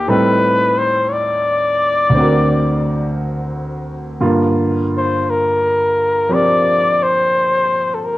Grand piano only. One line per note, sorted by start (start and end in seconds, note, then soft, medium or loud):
0.08 2.14 A2 soft
0.08 2.14 G3 soft
0.08 2.13 C4 soft
0.08 2.15 D#4 soft
0.08 2.15 A4 soft
2.09 4.20 D2 soft
2.09 4.19 D3 soft
2.15 4.22 C4 soft
2.15 4.24 F#4 soft
2.20 4.25 A#4 medium
4.20 8.18 G2 soft
4.20 8.18 D3 soft
4.20 8.18 A#3 soft
4.20 8.18 F4 soft
6.29 8.18 F3 soft
6.29 8.18 C4 soft
6.29 8.18 G4 soft
6.29 8.18 A#4 soft